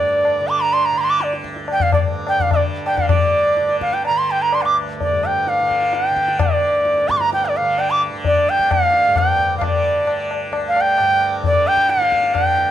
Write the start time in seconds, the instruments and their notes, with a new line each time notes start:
Already playing: tanpura D2 G2 D3, bansuri D5
0.25 tabla na
0.41 tanpura D3
0.49 bansuri D6, tabla na
0.61 bansuri A#5
0.73 bansuri C6, tabla na
0.85 bansuri A#5
0.92 tanpura D3
0.97 bansuri A#5 C6, tabla na
1.04 bansuri C6
1.10 bansuri D6
1.20 bansuri D5, tabla te
1.33 tabla te
1.43 tanpura D2, tabla ke
1.56 tabla te
1.68 tabla na
1.72 bansuri G5
1.80 bansuri F5, tabla tin, tabla ge
1.92 tanpura G2, bansuri D5, tabla na, tabla ge
2.27 bansuri G5, tabla na
2.40 bansuri F5, tabla tin, tabla ge
2.44 tanpura D3
2.51 bansuri D5, tabla na, tabla ge
2.86 bansuri G5, tabla na
2.94 tanpura D3, bansuri F5, tabla tin, tabla ge
3.09 tanpura G2, bansuri D5, tabla na, tabla ge
3.57 tanpura D3, tabla te
3.69 tabla te
3.81 bansuri F5, tabla ke
3.93 bansuri G5, tabla te
4.05 bansuri A#5, tabla na
4.10 tanpura D3
4.18 bansuri C6
4.31 bansuri G5
4.42 bansuri A#5
4.52 bansuri C6, tabla na
4.62 tanpura D2, bansuri F5 D6
4.77 tabla na
5.01 bansuri D5, tabla tin, tabla ge
5.12 tanpura G2
5.23 bansuri G5, tabla na
5.47 bansuri F5, tabla te
5.59 tanpura D3, tabla te
5.71 tabla ke
5.82 tabla te
5.93 bansuri G5, tabla te
6.05 tabla te
6.11 tanpura D3
6.17 tabla ke
6.28 tabla te
6.39 bansuri D5, tabla na, tabla ge
6.59 tanpura D2
6.85 tabla te
6.98 tabla te
7.09 tanpura G2, bansuri D6, tabla ke
7.17 bansuri A#5 C6, tabla te
7.33 bansuri G5, tabla te
7.45 bansuri D5
7.55 bansuri F5, tabla te
7.61 tanpura D3
7.78 bansuri G5, tabla na
7.91 bansuri D6
8.10 tanpura D3
8.25 bansuri D5, tabla tin, tabla ge
8.48 bansuri G5, tabla na
8.60 tanpura D2, tabla ke
8.71 bansuri F5, tabla na, tabla ge
8.94 tabla te
9.07 tanpura G2
9.16 bansuri G5, tabla na, tabla ge
9.39 tabla ge
9.56 tanpura D3, bansuri F5
9.61 bansuri D5, tabla na, tabla ge
10.04 tanpura D3, tabla na
10.31 tabla na
10.51 tanpura D2, tabla na
10.68 bansuri F5
10.76 tabla na
10.81 bansuri G5
10.98 tanpura G2, tabla na
11.21 tabla na
11.44 tanpura D3, bansuri D5, tabla tin, tabla ge
11.66 bansuri G5, tabla na
11.77 tabla ke
11.89 bansuri F5, tabla te
11.96 tanpura D3
12.01 tabla te
12.12 tabla ke
12.24 tabla te
12.34 bansuri G5, tabla na, tabla ge
12.43 tanpura D2
12.58 tabla te